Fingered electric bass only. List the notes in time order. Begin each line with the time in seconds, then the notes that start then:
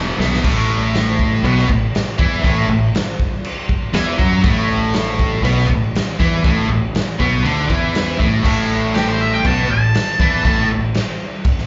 Already playing: E1
0.19 B1
0.44 A1
1.44 B1
1.69 A1
2.19 E2
2.45 A1
2.69 A1
3.94 E2
4.19 F#2
4.44 A1
5.43 B1
5.70 A1
6.20 E2
6.45 A1
6.68 A1
7.20 B1
7.44 D2
7.69 E2
8.20 A1
8.45 A1
9.45 B1
9.68 A1
10.20 E2
10.45 A1
10.69 A1